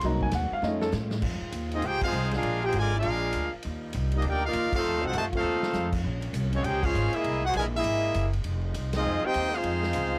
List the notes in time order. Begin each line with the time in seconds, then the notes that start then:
Already playing: D#3
0.01 C2 F#3 A#3 C4 F#4, snare, ride
0.05 D#4 A#5
0.21 G#5, kick
0.31 D#2 F#5, snare, hi-hat pedal, ride
0.51 F5, muted upright bass stroke
0.61 F2 A3 C#4 D#4 F4 D#5, snare
0.81 A4, snare
0.92 A2, snare, hi-hat pedal
1.11 snare
1.21 F2 D#3 G#3 C4 F4, kick, crash
1.41 muted upright bass stroke
1.52 D#2, hi-hat pedal, ride
1.71 G#3 C4 D#4 F4 G#4 D#5, ride
1.82 C#2 D#4 G4 G#4 C5 G5, ride
2.01 G#3 C4 D#4 F4 G#4 F5, muted upright bass stroke, kick, crash
2.05 C5
2.12 C2, hi-hat pedal
2.23 snare
2.31 G#3 D4 F4 G#4, snare, ride
2.36 D4 A#4 F5
2.42 A#1 F3 G#3 A#3, ride
2.64 D#4 G4 G#4 C5 G5
2.72 G#1 G#3, hi-hat pedal, ride
2.77 D3 F3 F4 A#4 D5 G#5
2.95 G#3 D4 F4 G#4 A#4 F5
3.02 A#1, ride
3.32 D2, hi-hat pedal, ride
3.54 muted upright bass stroke
3.62 D#2 G3 D#4, ride
3.93 C2, hi-hat pedal, ride
4.12 G3 A#3 D#4, ride
4.16 A#3 D4 G4 D#5
4.22 D2, ride
4.27 A#3 D4 D#4 G4 A#4 D5 G5
4.45 A#3 D#4 F4 A#4 D5 F5
4.53 D#2, hi-hat pedal, ride
4.73 A3 C4 D#4 F4 A4 C5 F5, muted upright bass stroke, kick, crash
4.84 F2 D#3 F#3 A3 F4
4.94 D#2
5.02 C2 C4 D#4 F#4 A4 C5 F#5
5.13 F#2 C3 D#3 A3 F#4 C5 D#5 A5, hi-hat pedal, ride
5.33 A3 C4 D#4 F4 A4 C5 F5, kick, ride
5.43 D#2
5.63 snare
5.73 F2, snare, hi-hat pedal
5.92 kick, crash
6.04 A#1 A#2 G#3 A#3 C#4
6.22 ride
6.33 C2, hi-hat pedal, ride
6.52 F3 G#3 C4 C#4 F4 C#5, ride
6.64 C#2 D#4 G4 G#4 C5 G5, ride
6.83 G#3 C#4 F4 G#4 C5 F5, kick, crash
6.94 G#1, hi-hat pedal
7.13 G#3 A#3 E4 G#4 D#5 E5, muted upright bass stroke, ride
7.23 C2 C3 E4, ride
7.44 D#4 F#4 G#4 C5 F#5
7.54 A#1 A#2 E3 G#3 E4 A#4 D#5 G#5, hi-hat pedal, ride
7.75 G#3 A#3 E4 G#4 D#5 E5
7.84 G#1, ride
8.14 F#1, hi-hat pedal, ride
8.33 ride
8.44 F1 F3 D#4, ride
8.74 C2, hi-hat pedal, ride
8.93 G#3 C4 D#4 F4 G#4, snare, ride
8.97 D#5
9.04 F2
9.24 C4 D#4 F4 G4 C5 D#5 G5, muted upright bass stroke
9.34 D#2, hi-hat pedal, ride
9.54 G#3 C4 D#4 F4 G#4 C5 F5
9.63 F2, ride
9.83 snare
9.93 C#2, hi-hat pedal, ride